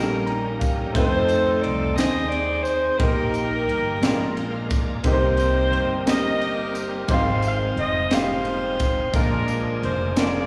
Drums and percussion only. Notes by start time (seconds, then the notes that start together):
0.27 ride
0.61 kick, ride, tambourine
0.95 kick, ride, tambourine
1.28 ride, tambourine
1.64 ride
1.98 snare, ride, tambourine
2.32 ride
2.65 ride, tambourine
3.00 kick, ride, tambourine
3.34 ride, tambourine
3.69 ride
4.03 snare, ride, tambourine
4.37 ride
4.70 kick, ride, tambourine
5.04 kick, ride, tambourine
5.37 ride, tambourine
5.73 ride
6.07 snare, ride, tambourine
6.41 ride
6.75 ride, tambourine
7.08 kick, ride, tambourine
7.42 ride, tambourine
7.77 ride
8.11 snare, ride, tambourine
8.45 ride
8.79 kick, ride, tambourine
9.13 kick, ride, tambourine
9.48 ride, tambourine
9.83 ride
10.16 snare, ride, tambourine